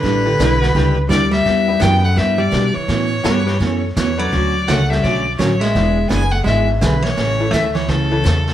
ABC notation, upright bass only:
X:1
M:4/4
L:1/8
Q:"Swing" 1/4=168
K:Amix
V:1 name="Upright bass" clef=bass
A,,,2 B,,,2 C,,2 D,,2 | E,,2 F,,2 G,,2 B,, z | A,,2 G,,2 F,,2 E,,2 | D,,2 C,,2 B,,,2 A,,,2 |
E,,,2 F,,,2 ^G,,,2 B,,,2 | A,,,2 D,,2 C,,2 E,,2 |]